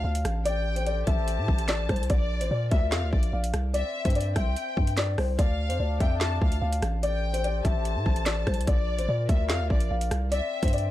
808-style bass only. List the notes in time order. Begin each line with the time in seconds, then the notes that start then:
0.04 D2
0.25 A1
1.07 A1
1.38 A2
1.48 A1
1.89 C2
2.10 A#1
2.41 A1
2.51 A#2
2.72 D2
2.92 F2
3.02 D2
3.13 A#1
3.33 A#1
3.54 C2
4.05 G2
4.36 C2
4.77 G2
5.18 C2
5.39 D2
5.69 F2
5.80 D2
6.00 F2
6.42 D2
6.62 D2
6.83 A1
7.65 A1
7.96 A2
8.06 A1
8.47 C2
8.67 A#1
8.98 A1
9.09 A#2
9.29 D2
9.50 F2
9.60 D2
9.70 A#1
9.91 A#1
10.11 C2
10.63 G2